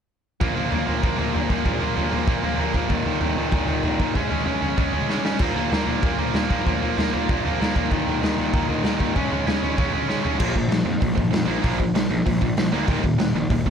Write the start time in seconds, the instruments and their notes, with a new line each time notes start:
0.41 distorted electric guitar A#2 F3 A#3, kick, floor tom
0.56 distorted electric guitar A#2 F3 A#3, floor tom
0.72 distorted electric guitar A#2 F3 A#3, floor tom
0.87 distorted electric guitar A#2 F3 A#3, floor tom
1.02 distorted electric guitar A#2 F3 A#3, kick, floor tom
1.19 distorted electric guitar A#2 F3 A#3, floor tom
1.34 distorted electric guitar A#2 F3 A#3, floor tom
1.50 distorted electric guitar A#2 F3 A#3, kick, floor tom
1.65 distorted electric guitar A#2 F3 A#3, kick, floor tom
1.80 distorted electric guitar A#2 F3 A#3, floor tom
1.95 distorted electric guitar A#2 F3 A#3, floor tom
2.12 distorted electric guitar A#2 F3 A#3, floor tom
2.28 distorted electric guitar A#2 F3 A#3, kick, floor tom
2.43 distorted electric guitar A#2 F3 A#3, floor tom
2.58 distorted electric guitar A#2 F3 A#3, floor tom
2.74 distorted electric guitar A#2 F3 A#3, kick, floor tom
2.89 distorted electric guitar D#2 A#2 D#3, kick, floor tom
3.05 distorted electric guitar D#2 A#2 D#3, floor tom
3.20 distorted electric guitar D#2 A#2 D#3, floor tom
3.36 distorted electric guitar D#2 A#2 D#3, floor tom
3.52 distorted electric guitar D#2 A#2 D#3, kick, floor tom
3.68 distorted electric guitar D#2 A#2 D#3, floor tom
3.83 distorted electric guitar D#2 A#2 D#3, floor tom
4.00 distorted electric guitar D#2 A#2 D#3, kick, floor tom
4.15 distorted electric guitar C#3 G#3 C#4, kick, floor tom
4.30 distorted electric guitar C#3 G#3 C#4, floor tom
4.46 distorted electric guitar C#3 G#3 C#4, floor tom
4.61 distorted electric guitar C#3 G#3 C#4, floor tom
4.77 distorted electric guitar C#3 G#3 C#4, kick, floor tom
4.94 distorted electric guitar C#3 G#3 C#4, floor tom
5.09 distorted electric guitar C#3 G#3 C#4, snare
5.24 distorted electric guitar C#3 G#3 C#4, snare
5.39 distorted electric guitar A#2 F3 A#3, kick, floor tom, crash
5.55 distorted electric guitar A#2 F3 A#3, floor tom
5.71 distorted electric guitar A#2 F3 A#3, snare, floor tom
5.86 distorted electric guitar A#2 F3 A#3, floor tom
6.02 distorted electric guitar A#2 F3 A#3, kick, floor tom
6.18 distorted electric guitar A#2 F3 A#3, floor tom
6.33 distorted electric guitar A#2 F3 A#3, snare, floor tom
6.50 distorted electric guitar A#2 F3 A#3, kick, floor tom
6.66 distorted electric guitar A#2 F3 A#3, kick, floor tom
6.82 distorted electric guitar A#2 F3 A#3, floor tom
6.98 distorted electric guitar A#2 F3 A#3, snare, floor tom
7.14 distorted electric guitar A#2 F3 A#3, floor tom
7.29 distorted electric guitar A#2 F3 A#3, kick, floor tom
7.45 distorted electric guitar A#2 F3 A#3, floor tom
7.60 distorted electric guitar A#2 F3 A#3, snare, floor tom
7.76 distorted electric guitar A#2 F3 A#3, kick, floor tom
7.91 distorted electric guitar D#2 A#2 D#3, kick, floor tom
8.06 distorted electric guitar D#2 A#2 D#3, floor tom
8.21 distorted electric guitar D#2 A#2 D#3, snare, floor tom
8.38 distorted electric guitar D#2 A#2 D#3, floor tom
8.53 distorted electric guitar D#2 A#2 D#3, kick, floor tom
8.68 distorted electric guitar D#2 A#2 D#3, floor tom
8.84 distorted electric guitar D#2 A#2 D#3, snare, floor tom
8.99 distorted electric guitar D#2 A#2 D#3, kick, floor tom
9.15 distorted electric guitar C#3 G#3 C#4, kick, floor tom
9.30 distorted electric guitar C#3 G#3 C#4, floor tom
9.46 distorted electric guitar C#3 G#3 C#4, snare, floor tom
9.61 distorted electric guitar C#3 G#3 C#4, floor tom
9.77 distorted electric guitar C#3 G#3 C#4, kick, floor tom
9.93 distorted electric guitar C#3 G#3 C#4, floor tom
10.08 distorted electric guitar C#3 G#3 C#4, snare
10.25 distorted electric guitar C#3 G#3 C#4, floor tom
10.39 picked electric bass A#1, distorted electric guitar A#2 F3 A#3, kick, crash
10.55 picked electric bass A#1, distorted electric guitar A#2 F3, kick
10.68 picked electric bass A#1, distorted electric guitar A#2 F3, snare, open hi-hat
10.85 picked electric bass F2, distorted electric guitar A#2 F3
11.01 picked electric bass A#1, distorted electric guitar A#2 F3, kick, open hi-hat
11.17 picked electric bass G#1, distorted electric guitar A#2 F3, kick
11.32 picked electric bass F2, distorted electric guitar A#2 F3, snare, open hi-hat
11.47 picked electric bass A#1, distorted electric guitar A#2 F3 A#3
11.63 picked electric bass A#1, distorted electric guitar A#2 F3 A#3, kick, open hi-hat
11.79 distorted electric guitar A#2 F3, kick
11.94 picked electric bass A#1, distorted electric guitar A#2 F3, snare, open hi-hat
12.09 picked electric bass A#1, distorted electric guitar A#2 F3
12.25 picked electric bass A#1, distorted electric guitar A#2 F3, kick, open hi-hat
12.41 picked electric bass A#1, distorted electric guitar A#2 F3, kick
12.56 picked electric bass A#1, distorted electric guitar A#2 F3, snare, open hi-hat
12.73 picked electric bass D2, distorted electric guitar A#2 F3 A#3
12.87 picked electric bass D#1, distorted electric guitar D#2 A#2 D#3, kick, open hi-hat
13.04 picked electric bass D#1, distorted electric guitar D#2 A#2, kick
13.19 picked electric bass D#1, distorted electric guitar D#2 A#2, snare, open hi-hat
13.34 picked electric bass A#1, distorted electric guitar D#2 A#2
13.49 picked electric bass D#1, distorted electric guitar D#2 A#2, kick, open hi-hat
13.66 picked electric bass C2, distorted electric guitar D#2 A#2, kick